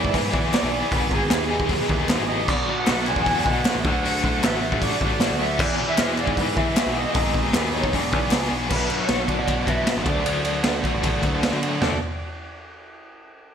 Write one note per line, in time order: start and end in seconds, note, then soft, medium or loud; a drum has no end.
0.00 0.34 E2 medium
0.00 0.13 E3 medium
0.00 0.53 E3 medium
0.00 0.15 B3 medium
0.00 0.34 B3 medium
0.00 0.16 E4 medium
0.00 0.92 E4 medium
0.00 0.17 G#4 medium
0.00 0.14 D5 medium
0.00 0.13 D6 medium
0.05 0.32 G#2 medium
0.05 kick medium
0.14 0.51 E3 medium
0.14 0.95 F#3 medium
0.14 0.36 B3 medium
0.14 0.34 E4 medium
0.14 0.32 G#4 medium
0.14 0.32 B4 loud
0.14 0.34 B5 medium
0.14 kick loud
0.14 open hi-hat medium
0.32 0.52 E3 loud
0.32 0.71 B3 medium
0.32 0.53 E4 medium
0.32 0.54 G#4 medium
0.32 0.38 D5 medium
0.32 0.43 D6 medium
0.32 kick medium
0.36 0.53 B3 medium
0.51 0.91 E3 medium
0.51 0.75 B3 loud
0.51 0.73 E4 loud
0.51 0.93 G#4 medium
0.51 0.92 D5 medium
0.51 0.88 D6 medium
0.51 snare loud
0.51 clap loud
0.51 open hi-hat medium
0.55 0.71 G#4 loud
0.63 0.82 B1 medium
0.72 1.31 B3 medium
0.72 0.90 B3 medium
0.72 0.92 E4 medium
0.72 0.91 G#4 medium
0.89 1.29 G#1 loud
0.89 1.90 G#2 medium
0.89 1.29 B3 medium
0.89 1.14 D#4 loud
0.89 1.13 B4 medium
0.89 1.09 B5 medium
0.89 kick loud
0.89 open hi-hat medium
0.94 1.10 G#4 loud
1.11 2.09 D#3 medium
1.11 1.30 G#4 medium
1.11 1.33 G#4 medium
1.11 1.29 G#5 medium
1.11 kick medium
1.15 1.31 D#4 medium
1.30 1.59 D#2 loud
1.30 1.52 B3 medium
1.30 1.90 B3 medium
1.30 1.51 D#4 medium
1.30 2.05 G#4 medium
1.30 2.05 G#5 medium
1.30 snare loud
1.30 clap loud
1.30 open hi-hat medium
1.34 1.49 G#4 medium
1.50 1.67 B3 medium
1.50 2.49 D#4 medium
1.50 1.69 D#4 medium
1.50 1.70 G#4 medium
1.60 1.79 D#2 medium
1.60 kick medium
1.68 2.70 F#3 medium
1.68 2.06 B3 medium
1.68 1.90 D#4 medium
1.68 1.87 G#4 medium
1.68 kick medium
1.68 open hi-hat medium
1.88 2.18 D#2 loud
1.88 2.30 B3 medium
1.88 2.08 D#4 medium
1.88 2.10 G#4 medium
1.88 kick medium
2.07 2.46 B3 medium
2.07 2.31 D#4 medium
2.07 2.48 G#4 medium
2.07 2.27 G#4 loud
2.07 snare loud
2.07 clap medium
2.07 open hi-hat medium
2.20 2.48 A1 medium
2.27 2.50 B3 medium
2.27 2.47 G#4 medium
2.27 2.49 D#5 loud
2.27 2.46 D#6 medium
2.32 2.49 D#4 medium
2.45 2.67 B1 loud
2.45 2.87 F#3 medium
2.45 2.79 D5 loud
2.45 2.76 D6 medium
2.45 kick loud
2.45 crash loud
2.49 3.46 B2 medium
2.49 2.71 B3 loud
2.49 2.69 D4 loud
2.49 2.68 F#4 loud
2.68 3.26 F#3 medium
2.68 2.87 B3 medium
2.68 2.89 D4 medium
2.68 2.90 F#4 medium
2.77 3.09 F#5 loud
2.77 3.05 F#6 medium
2.87 3.16 B1 loud
2.87 3.08 F#3 medium
2.87 3.46 A3 medium
2.87 3.07 B3 medium
2.87 3.07 D4 medium
2.87 3.05 F#4 medium
2.87 snare loud
2.87 clap loud
2.87 open hi-hat medium
3.06 3.25 F#3 medium
3.06 3.25 B3 medium
3.06 3.27 D4 medium
3.06 3.86 D4 medium
3.06 3.28 F#4 medium
3.06 3.26 G#5 loud
3.06 3.25 G#6 loud
3.06 clap medium
3.16 3.44 E2 medium
3.16 kick medium
3.25 3.65 F#3 medium
3.25 3.84 F#3 medium
3.25 3.48 B3 medium
3.25 3.47 D4 medium
3.25 3.46 F#4 medium
3.25 3.46 G#5 loud
3.25 3.44 G#6 medium
3.25 kick loud
3.25 open hi-hat medium
3.46 3.64 B2 medium
3.46 3.86 A3 medium
3.46 3.65 B3 medium
3.46 3.66 D4 medium
3.46 3.68 F#4 medium
3.46 3.86 F#5 loud
3.46 3.83 F#6 medium
3.46 kick medium
3.65 3.87 F#3 medium
3.65 3.84 B3 loud
3.65 3.84 D4 loud
3.65 5.21 F#4 medium
3.65 3.83 F#4 loud
3.65 snare loud
3.65 clap medium
3.65 open hi-hat medium
3.75 3.84 A1 medium
3.84 4.40 D2 loud
3.84 4.04 D3 medium
3.84 4.03 F#3 medium
3.84 4.03 A3 medium
3.84 4.04 D4 medium
3.84 4.06 F#4 loud
3.84 4.05 F#5 loud
3.84 4.03 F#6 medium
3.84 kick loud
4.03 4.82 D3 medium
4.03 4.42 F#3 loud
4.03 4.25 A3 loud
4.03 4.24 D4 loud
4.03 4.23 F#4 loud
4.03 4.22 F#5 loud
4.03 4.23 F#6 medium
4.03 open hi-hat medium
4.23 4.43 A3 medium
4.23 4.43 D4 medium
4.23 4.45 F#4 medium
4.23 4.44 F#5 loud
4.23 4.43 F#6 medium
4.23 kick medium
4.42 4.71 A1 loud
4.42 4.65 F#3 medium
4.42 4.63 A3 medium
4.42 5.01 A3 medium
4.42 4.62 D4 medium
4.42 4.62 F#4 medium
4.42 4.84 E5 loud
4.42 4.82 E6 medium
4.42 snare loud
4.42 clap loud
4.42 open hi-hat medium
4.62 4.81 F#3 medium
4.62 4.81 A3 medium
4.62 4.82 D4 medium
4.62 4.84 F#4 medium
4.72 4.91 A1 medium
4.72 kick medium
4.81 5.61 D3 medium
4.81 5.18 F#3 medium
4.81 5.03 A3 medium
4.81 5.02 D4 medium
4.81 5.00 F#4 medium
4.81 5.42 D5 loud
4.81 5.37 D6 medium
4.81 kick loud
4.81 open hi-hat medium
5.00 5.29 A1 loud
5.00 5.38 A3 medium
5.00 5.19 A3 medium
5.00 5.20 D4 medium
5.00 5.23 F#4 medium
5.00 kick medium
5.19 5.57 F#3 loud
5.19 5.42 A3 medium
5.19 5.40 D4 loud
5.19 5.64 F#4 medium
5.19 snare loud
5.19 clap medium
5.19 open hi-hat medium
5.23 5.39 F#4 loud
5.31 5.60 D2 medium
5.39 5.59 A3 medium
5.39 5.59 D4 medium
5.39 5.61 F#4 medium
5.39 5.61 E5 loud
5.39 5.60 E6 medium
5.58 5.78 E2 loud
5.58 6.57 E2 medium
5.58 5.96 E3 loud
5.58 5.80 B3 medium
5.58 5.78 E4 loud
5.58 5.77 G#4 loud
5.58 5.91 D5 loud
5.58 kick loud
5.58 crash loud
5.63 5.89 D6 medium
5.77 6.77 B2 medium
5.77 5.98 B3 medium
5.77 5.98 E4 medium
5.77 6.00 G#4 medium
5.88 6.19 E5 loud
5.88 6.17 E6 medium
5.97 6.28 E2 loud
5.97 6.18 E3 medium
5.97 6.18 B3 medium
5.97 6.16 E4 medium
5.97 6.15 G#4 medium
5.97 snare loud
5.97 clap loud
5.97 open hi-hat medium
6.01 6.57 G#3 medium
6.15 6.33 E3 medium
6.15 6.35 B3 medium
6.15 7.56 B3 medium
6.15 6.35 E4 medium
6.15 6.37 G#4 medium
6.15 6.40 D5 medium
6.15 clap medium
6.20 6.37 D6 medium
6.27 6.55 G#2 loud
6.27 kick medium
6.34 6.73 E3 medium
6.34 6.57 B3 medium
6.34 6.55 E4 medium
6.34 6.53 G#4 medium
6.34 kick loud
6.34 open hi-hat medium
6.39 7.16 E3 medium
6.39 6.58 B4 loud
6.39 6.58 B5 medium
6.54 6.75 E3 medium
6.54 6.75 B3 medium
6.54 6.75 E4 medium
6.54 6.76 G#4 medium
6.54 6.97 E5 medium
6.54 kick medium
6.59 6.96 G#3 medium
6.59 6.94 E6 medium
6.74 7.13 E3 medium
6.74 6.96 B3 medium
6.74 6.93 E4 loud
6.74 7.16 F#4 medium
6.74 6.92 G#4 loud
6.74 snare loud
6.74 clap loud
6.74 open hi-hat medium
6.87 7.05 B1 medium
6.93 7.12 B3 medium
6.93 7.13 E4 medium
6.93 7.13 G#4 medium
6.97 7.16 G#3 medium
6.97 7.34 D#5 loud
6.97 7.33 D#6 medium
7.13 7.52 G#1 loud
7.13 7.94 G#2 medium
7.13 7.51 B3 loud
7.13 7.35 D#4 medium
7.13 kick loud
7.13 open hi-hat medium
7.17 7.32 G#4 loud
7.33 7.93 D#3 medium
7.33 7.52 D#4 medium
7.33 7.54 G#4 medium
7.33 kick medium
7.52 7.82 D#2 loud
7.52 7.74 B3 medium
7.52 7.94 B3 medium
7.52 7.72 D#4 medium
7.52 7.70 G#4 medium
7.52 7.73 B4 medium
7.52 snare loud
7.52 clap loud
7.52 open hi-hat medium
7.57 7.74 B5 medium
7.72 7.89 B3 medium
7.72 7.92 D#4 medium
7.72 7.94 D#4 medium
7.72 7.91 G#4 medium
7.72 7.94 C#5 medium
7.72 7.92 C#6 medium
7.84 7.93 B1 medium
7.84 kick medium
7.91 8.13 E1 loud
7.91 8.71 E2 medium
7.91 8.29 B3 medium
7.91 8.14 D4 loud
7.91 8.10 G#4 medium
7.91 8.51 D5 medium
7.91 kick medium
7.91 open hi-hat medium
7.97 8.53 D6 medium
8.11 8.31 B1 medium
8.11 8.52 B3 medium
8.11 8.31 D4 medium
8.11 8.32 G#4 medium
8.11 kick medium
8.30 8.49 C#2 medium
8.30 8.67 B3 medium
8.30 8.51 D4 medium
8.30 8.71 G#4 medium
8.30 8.48 G#4 loud
8.30 snare loud
8.30 clap medium
8.30 open hi-hat medium
8.49 8.69 B1 medium
8.49 8.69 D4 medium
8.49 8.68 G#4 medium
8.53 8.71 B3 medium
8.67 8.89 B1 medium
8.67 9.06 F#3 medium
8.67 8.89 B3 medium
8.67 8.87 D4 medium
8.67 9.00 B4 medium
8.67 crash loud
8.71 9.09 B2 medium
8.71 9.10 F#3 medium
8.71 8.93 B3 medium
8.71 8.92 D4 medium
8.71 8.91 F#4 medium
8.71 kick medium
8.87 9.07 B3 soft
8.87 9.09 D4 medium
8.87 ride medium
8.91 9.10 B3 medium
8.91 9.12 D4 medium
8.91 9.12 F#4 medium
9.00 9.29 C#5 medium
9.06 9.37 B1 medium
9.06 9.44 F#3 medium
9.06 9.28 B3 medium
9.06 9.25 D4 medium
9.06 snare loud
9.06 ride medium
9.10 9.30 F#3 medium
9.10 9.28 B3 medium
9.10 9.28 D4 medium
9.10 9.27 F#4 medium
9.26 9.47 B3 medium
9.26 9.45 B3 medium
9.26 9.48 D4 medium
9.26 9.49 D4 medium
9.26 9.50 F#4 medium
9.26 9.68 D5 medium
9.26 kick medium
9.26 ride medium
9.30 9.69 B2 medium
9.30 9.47 F#3 medium
9.39 9.66 B2 loud
9.45 9.85 F#3 medium
9.45 9.69 F#3 medium
9.45 9.67 B3 medium
9.45 9.68 B3 medium
9.45 9.64 D4 medium
9.45 kick medium
9.45 ride medium
9.49 9.68 D4 medium
9.49 9.67 F#4 medium
9.65 9.95 B2 medium
9.65 9.85 B3 medium
9.65 9.88 D4 medium
9.65 9.87 D4 medium
9.65 9.88 F#4 medium
9.65 kick medium
9.65 ride medium
9.69 10.06 B2 medium
9.69 9.85 F#3 medium
9.69 9.85 B3 medium
9.69 10.04 E5 loud
9.85 10.07 F#3 medium
9.85 10.05 B3 medium
9.85 10.04 D4 medium
9.85 10.03 D4 medium
9.85 10.03 F#4 medium
9.85 snare loud
9.85 ride loud
9.97 10.05 A1 medium
10.04 10.61 D2 loud
10.04 10.23 D3 medium
10.04 10.22 F#3 medium
10.04 10.24 A3 medium
10.04 10.25 A3 medium
10.04 10.25 D4 medium
10.04 10.27 F#4 medium
10.04 kick loud
10.04 ride medium
10.09 11.39 D5 loud
10.23 10.63 D3 medium
10.23 10.61 F#3 medium
10.23 10.45 A3 medium
10.23 10.47 A3 medium
10.23 10.46 D4 loud
10.23 10.41 D4 loud
10.23 ride medium
10.28 10.44 F#4 loud
10.42 10.64 A3 medium
10.42 10.65 D4 medium
10.42 10.66 F#4 medium
10.42 ride medium
10.47 10.65 A3 medium
10.47 10.65 D4 medium
10.62 10.83 D2 medium
10.62 10.85 D3 medium
10.62 11.01 F#3 medium
10.62 10.84 A3 medium
10.62 10.81 D4 medium
10.62 10.83 D4 medium
10.62 snare loud
10.62 ride loud
10.67 10.82 F#4 medium
10.83 11.01 D3 medium
10.83 11.02 A3 medium
10.83 11.04 D4 medium
10.83 11.03 D4 medium
10.83 11.04 F#4 medium
10.83 kick medium
10.83 ride medium
10.94 11.21 A1 medium
11.02 11.24 D3 medium
11.02 11.40 F#3 medium
11.02 11.23 A3 medium
11.02 11.25 A3 medium
11.02 11.22 D4 medium
11.02 11.20 F#4 medium
11.02 kick medium
11.02 ride medium
11.22 11.50 D2 loud
11.22 11.40 D3 medium
11.22 11.42 A3 medium
11.22 11.42 D4 medium
11.22 11.44 D4 medium
11.22 11.44 F#4 loud
11.22 kick medium
11.22 ride medium
11.26 11.42 A3 medium
11.41 11.79 D3 medium
11.41 11.79 F#3 medium
11.41 11.63 A3 medium
11.41 11.79 A3 medium
11.41 11.62 D4 medium
11.41 11.80 D4 medium
11.41 snare loud
11.41 ride medium
11.45 11.60 F#4 medium
11.53 11.80 D3 medium
11.61 11.81 A3 medium
11.61 11.80 D4 medium
11.61 11.79 F#4 medium
11.61 ride medium
11.80 11.99 D2 medium
11.80 11.96 D3 medium
11.80 11.96 A3 medium
11.80 11.96 D4 loud
11.80 11.97 D4 loud
11.80 11.96 F#4 medium
11.80 11.97 F#4 loud
11.80 11.97 A4 medium
11.80 11.99 D5 medium
11.80 snare medium
11.80 floor tom loud